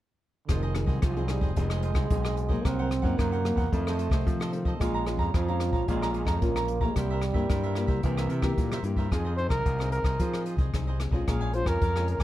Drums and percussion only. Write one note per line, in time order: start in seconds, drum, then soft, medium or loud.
0.49 kick medium
0.49 cross-stick medium
0.49 closed hi-hat medium
0.75 cross-stick medium
0.75 closed hi-hat soft
0.88 kick medium
1.02 kick medium
1.02 cross-stick medium
1.02 closed hi-hat medium
1.16 closed hi-hat soft
1.28 cross-stick medium
1.28 closed hi-hat medium
1.41 kick medium
1.56 kick medium
1.56 closed hi-hat medium
1.70 cross-stick medium
1.82 closed hi-hat medium
1.95 kick medium
1.95 cross-stick medium
2.10 kick medium
2.10 closed hi-hat medium
2.25 cross-stick medium
2.25 closed hi-hat soft
2.37 closed hi-hat soft
2.50 kick medium
2.65 kick medium
2.65 cross-stick medium
2.65 closed hi-hat medium
2.91 cross-stick medium
2.91 closed hi-hat soft
3.04 kick medium
3.19 kick medium
3.19 cross-stick medium
3.19 closed hi-hat medium
3.33 closed hi-hat soft
3.45 cross-stick medium
3.45 closed hi-hat soft
3.58 kick medium
3.58 closed hi-hat soft
3.73 kick medium
3.73 closed hi-hat medium
3.87 cross-stick medium
3.99 closed hi-hat soft
4.11 kick medium
4.11 cross-stick medium
4.27 kick medium
4.27 closed hi-hat medium
4.41 cross-stick medium
4.53 closed hi-hat soft
4.65 kick medium
4.81 kick medium
4.81 cross-stick medium
4.81 closed hi-hat medium
5.06 cross-stick medium
5.06 closed hi-hat soft
5.19 kick medium
5.34 kick medium
5.34 cross-stick medium
5.34 closed hi-hat medium
5.48 closed hi-hat soft
5.60 cross-stick medium
5.60 closed hi-hat soft
5.73 kick medium
5.88 kick medium
5.88 closed hi-hat medium
6.02 cross-stick medium
6.14 closed hi-hat soft
6.27 kick medium
6.27 cross-stick medium
6.42 kick medium
6.42 closed hi-hat medium
6.56 cross-stick medium
6.56 closed hi-hat soft
6.68 closed hi-hat medium
6.81 kick medium
6.96 kick medium
6.96 cross-stick medium
6.96 closed hi-hat medium
7.22 cross-stick medium
7.22 closed hi-hat soft
7.35 kick medium
7.50 kick medium
7.50 cross-stick medium
7.50 closed hi-hat medium
7.63 closed hi-hat soft
7.75 cross-stick medium
7.75 closed hi-hat soft
7.88 kick medium
7.88 closed hi-hat soft
8.03 kick medium
8.03 closed hi-hat medium
8.18 cross-stick medium
8.30 closed hi-hat soft
8.42 kick medium
8.42 cross-stick medium
8.58 kick medium
8.58 closed hi-hat medium
8.72 cross-stick medium
8.84 closed hi-hat soft
8.96 kick medium
9.12 kick medium
9.12 cross-stick medium
9.12 closed hi-hat medium
9.38 closed hi-hat soft
9.50 kick medium
9.50 cross-stick medium
9.66 kick medium
9.66 closed hi-hat medium
9.80 cross-stick medium
9.92 closed hi-hat soft
10.04 kick medium
10.04 cross-stick medium
10.04 closed hi-hat soft
10.19 kick medium
10.19 closed hi-hat medium
10.34 cross-stick medium
10.46 closed hi-hat soft
10.58 kick medium
10.58 closed hi-hat soft
10.74 kick medium
10.74 cross-stick medium
10.74 closed hi-hat medium
11.00 cross-stick medium
11.00 closed hi-hat medium
11.13 kick medium
11.28 kick medium
11.28 cross-stick medium
11.28 closed hi-hat medium
11.42 closed hi-hat soft
11.53 closed hi-hat soft
11.66 kick medium
11.66 cross-stick medium
11.82 kick medium
11.82 closed hi-hat medium
11.96 cross-stick medium
11.96 closed hi-hat soft
12.08 closed hi-hat soft
12.20 cross-stick medium
12.20 closed hi-hat soft